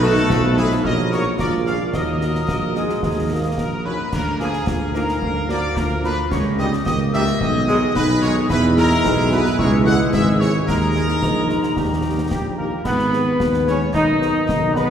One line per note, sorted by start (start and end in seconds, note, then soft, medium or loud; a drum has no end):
0.00 0.21 B1 loud
0.00 0.26 D#3 loud
0.00 0.81 A3 loud
0.00 0.13 A3 medium
0.00 0.26 D#4 loud
0.00 0.13 D#4 medium
0.00 0.53 F#4 loud
0.00 0.58 A4 loud
0.00 0.13 A4 medium
0.00 0.59 A5 loud
0.00 snare medium
0.16 snare medium
0.29 0.75 B1 loud
0.29 0.80 F3 medium
0.29 0.42 F4 loud
0.29 concert bass drum medium
0.29 snare medium
0.56 0.67 A3 medium
0.56 0.86 D#4 loud
0.56 0.68 D#4 medium
0.56 0.69 G#4 loud
0.56 0.67 A4 medium
0.56 0.70 B4 loud
0.56 0.87 B5 loud
0.56 snare medium
0.71 snare medium
0.84 1.30 A#1 loud
0.84 1.39 F#3 loud
0.84 1.35 A#3 medium
0.84 1.39 F#4 loud
0.84 0.96 A#4 loud
0.84 1.10 D#5 loud
0.84 1.12 D#6 loud
0.84 concert bass drum medium
1.11 1.22 A#3 medium
1.11 1.22 D#4 medium
1.11 1.22 F#4 medium
1.11 1.23 A#4 loud
1.11 1.24 C#5 loud
1.11 1.38 C#6 loud
1.11 snare medium
1.38 1.85 A#1 medium
1.38 1.93 G#3 medium
1.38 1.90 A#3 medium
1.38 1.96 F4 medium
1.38 1.50 A#4 loud
1.38 1.52 D5 loud
1.38 1.65 D6 loud
1.38 concert bass drum medium
1.38 snare medium
1.65 1.77 A#3 medium
1.65 1.77 F4 medium
1.65 1.77 G#4 medium
1.65 1.91 D5 medium
1.65 1.79 F5 loud
1.65 1.73 F6 medium
1.65 snare medium
1.93 2.40 D#2 medium
1.93 2.40 F#3 medium
1.93 2.40 A#3 medium
1.93 3.86 F#4 medium
1.93 3.54 A#4 loud
1.93 3.54 D#5 loud
1.93 3.54 D#6 loud
1.93 concert bass drum medium
1.93 snare medium
1.93 crash soft
2.21 2.31 A#3 medium
2.21 2.31 D#4 medium
2.21 2.32 F#4 medium
2.21 snare medium
2.35 snare medium
2.48 2.94 A#1 medium
2.48 2.74 A#3 medium
2.48 concert bass drum medium
2.48 snare medium
2.75 3.27 G#3 medium
2.75 2.86 A#3 medium
2.75 2.86 D#4 medium
2.75 2.86 F#4 medium
2.75 snare medium
2.89 snare medium
3.03 3.49 D#2 medium
3.03 concert bass drum medium
3.03 snare medium
3.31 3.41 A#3 medium
3.31 3.69 A#3 medium
3.31 3.41 D#4 medium
3.31 3.41 F#4 medium
3.57 3.99 A#1 medium
3.57 3.83 A#4 loud
3.57 3.83 A#5 medium
3.57 concert bass drum medium
3.57 snare medium
3.85 3.95 A#3 medium
3.85 3.98 C#4 medium
3.85 3.95 D#4 medium
3.85 3.95 F#4 medium
3.85 4.11 B4 loud
3.85 4.11 B5 medium
4.12 4.58 D2 medium
4.12 4.63 D4 medium
4.12 6.27 A#4 medium
4.12 4.38 A#4 loud
4.12 6.27 F5 medium
4.12 4.38 A#5 medium
4.12 concert bass drum medium
4.12 snare medium
4.12 crash medium
4.40 4.50 F3 medium
4.40 4.50 A#3 medium
4.40 4.50 F4 medium
4.40 4.91 G#4 loud
4.40 4.91 G#5 medium
4.40 snare medium
4.53 snare medium
4.67 5.13 D2 medium
4.67 4.79 F4 medium
4.67 concert bass drum medium
4.67 snare medium
4.94 5.05 F3 medium
4.94 5.05 A#3 medium
4.94 5.22 D#4 medium
4.94 5.04 F4 medium
4.94 5.49 A#4 loud
4.94 5.45 A#5 medium
4.94 snare medium
5.08 snare medium
5.20 5.68 D2 medium
5.20 5.48 D4 medium
5.20 concert bass drum medium
5.48 5.59 F3 medium
5.48 5.59 A#3 medium
5.48 5.59 F4 medium
5.48 5.78 F#4 medium
5.48 5.75 D5 loud
5.48 5.75 D6 loud
5.48 snare medium
5.76 6.22 D2 loud
5.76 6.29 F4 medium
5.76 6.04 A#4 loud
5.76 5.83 A#5 medium
5.76 concert bass drum medium
5.76 snare medium
6.04 6.14 F3 medium
6.04 6.14 A#3 medium
6.04 6.14 F4 medium
6.04 6.16 B4 loud
6.04 6.30 B5 loud
6.04 snare medium
6.30 6.77 C#2 medium
6.30 6.81 C#4 loud
6.30 7.37 G4 medium
6.30 6.43 C#5 loud
6.30 8.46 D#5 medium
6.30 6.38 C#6 loud
6.30 concert bass drum medium
6.30 snare medium
6.30 crash soft
6.58 6.69 D#3 medium
6.58 6.69 G3 loud
6.58 6.68 A#3 medium
6.58 6.68 D#4 medium
6.58 6.68 G4 medium
6.58 6.70 D#5 loud
6.58 6.65 D#6 loud
6.58 snare medium
6.73 snare medium
6.85 7.31 C#2 loud
6.85 7.42 A#3 medium
6.85 6.98 D#5 loud
6.85 6.92 D#6 loud
6.85 concert bass drum medium
6.85 snare medium
7.13 7.23 D#3 loud
7.13 7.23 G3 loud
7.13 7.23 A#3 medium
7.13 7.23 D#4 medium
7.13 7.23 G4 medium
7.13 7.38 E5 loud
7.13 7.19 E6 loud
7.13 snare medium
7.27 snare medium
7.40 7.86 B1 loud
7.40 7.95 B3 loud
7.40 9.55 G#4 loud
7.40 7.95 D#5 loud
7.40 7.91 D#6 loud
7.40 concert bass drum medium
7.67 7.78 D#3 loud
7.67 7.77 G#3 medium
7.67 7.77 G#3 loud
7.67 7.77 D#4 medium
7.67 7.77 G#4 medium
7.67 snare medium
7.95 8.40 B1 loud
7.95 8.46 D#4 loud
7.95 8.20 B4 loud
7.95 8.02 B5 loud
7.95 concert bass drum medium
7.95 snare medium
8.22 8.32 D#3 loud
8.22 8.32 G#3 medium
8.22 8.32 G#3 loud
8.22 8.32 D#4 medium
8.22 8.32 G#4 medium
8.22 8.34 C#5 loud
8.22 8.29 C#6 loud
8.22 snare medium
8.48 8.95 E2 loud
8.48 9.54 E3 loud
8.48 9.54 G#3 loud
8.48 9.00 E4 loud
8.48 8.62 B4 loud
8.48 10.64 E5 loud
8.48 8.75 B5 loud
8.48 concert bass drum medium
8.48 snare medium
8.48 crash soft
8.77 8.87 G#3 loud
8.77 8.87 E4 medium
8.77 8.87 G#4 medium
8.77 9.27 A#4 loud
8.77 9.28 A#5 loud
8.77 snare medium
8.91 snare medium
9.04 9.50 B1 loud
9.04 9.17 G#4 loud
9.04 concert bass drum medium
9.04 snare medium
9.31 9.41 G#3 loud
9.31 9.41 E4 loud
9.31 9.57 F#4 loud
9.31 9.41 G#4 loud
9.31 9.58 B4 loud
9.31 9.38 B5 loud
9.31 snare medium
9.45 snare medium
9.58 10.00 C#2 loud
9.58 10.10 E3 loud
9.58 10.10 G#3 loud
9.58 10.36 E4 loud
9.58 11.60 G#4 loud
9.58 9.71 C#5 loud
9.58 9.84 C#6 loud
9.58 concert bass drum loud
9.86 9.96 G#3 medium
9.86 9.96 E4 medium
9.86 9.96 G#4 loud
9.86 9.98 F#5 loud
9.86 9.92 F#6 loud
9.86 snare medium
10.13 10.59 G#1 loud
10.13 10.64 E3 medium
10.13 10.64 G#3 loud
10.13 10.25 E5 loud
10.13 10.41 E6 loud
10.13 concert bass drum medium
10.13 snare medium
10.40 10.50 G#3 medium
10.40 10.50 E4 medium
10.40 10.50 G#4 medium
10.40 10.53 C#5 loud
10.40 10.67 C#6 loud
10.40 snare medium
10.67 11.13 D#2 loud
10.67 11.75 D#3 medium
10.67 11.73 G#3 medium
10.67 12.54 D#4 loud
10.67 12.27 A#4 loud
10.67 12.28 D#5 medium
10.67 12.27 A#5 loud
10.67 concert bass drum medium
10.67 snare medium
10.67 crash soft
10.95 11.05 G#3 medium
10.95 11.05 D#4 medium
10.95 11.05 G#4 medium
10.95 snare medium
11.09 snare medium
11.22 11.68 A#1 medium
11.22 concert bass drum medium
11.22 snare medium
11.49 11.60 G#3 medium
11.49 11.60 D#4 medium
11.49 11.59 G#4 medium
11.49 snare medium
11.63 snare medium
11.76 12.22 D#2 medium
11.76 12.27 D#3 medium
11.76 12.29 G3 medium
11.76 12.27 G4 medium
11.76 concert bass drum medium
11.76 snare medium
12.04 12.14 A#3 medium
12.04 12.14 D#4 medium
12.04 12.14 G4 medium
12.30 12.76 A#1 medium
12.30 12.56 G3 medium
12.30 12.43 G4 medium
12.30 12.56 G5 medium
12.30 concert bass drum medium
12.30 snare medium
12.57 12.85 A#3 medium
12.57 12.68 A#3 medium
12.57 12.68 D#4 medium
12.57 12.68 G4 medium
12.57 12.71 A#4 medium
12.57 12.84 A#4 medium
12.57 12.64 A#5 medium
12.84 13.31 G#1 medium
12.84 13.63 B3 loud
12.84 13.63 B4 medium
12.84 13.64 B4 medium
12.84 13.63 B5 medium
12.84 concert bass drum medium
12.84 snare medium
12.84 crash medium
12.99 snare medium
13.13 13.23 G#4 medium
13.13 13.23 B4 medium
13.13 snare medium
13.40 13.85 D#2 medium
13.40 13.96 G#3 medium
13.40 concert bass drum medium
13.40 snare medium
13.54 snare medium
13.66 13.80 C#4 loud
13.66 13.77 G#4 medium
13.66 13.77 B4 medium
13.66 13.93 C#5 medium
13.66 13.80 C#5 medium
13.66 13.73 C#6 medium
13.66 snare medium
13.93 14.40 B1 medium
13.93 14.90 D#3 loud
13.93 14.73 D#4 loud
13.93 14.76 D#5 loud
13.93 14.72 D#5 loud
13.93 14.72 D#6 loud
13.93 concert bass drum medium
13.93 snare medium
14.22 14.32 G#4 medium
14.22 14.32 B4 medium
14.22 snare medium
14.49 14.90 B1 medium
14.49 concert bass drum medium
14.49 snare medium
14.75 14.90 B3 loud
14.75 14.86 G#4 medium
14.75 14.88 B4 medium
14.75 14.86 B4 medium
14.75 14.90 B4 medium
14.75 14.82 B5 medium
14.75 snare medium